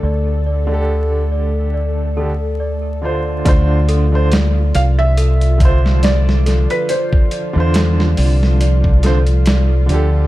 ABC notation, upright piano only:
X:1
M:4/4
L:1/16
Q:"Swing 16ths" 1/4=70
K:Dm
V:1 name="Upright piano"
[D,DGA]3 [D,DGA]6- [D,DGA] [D,DGA] z3 [D,DFc]2 | [D,DFc]3 [D,DFc] z6 [D,DFc]6- | [D,DFc]3 [D,DFc]6- [D,DFc] [D,DFc] z3 [D,DGA]2 |]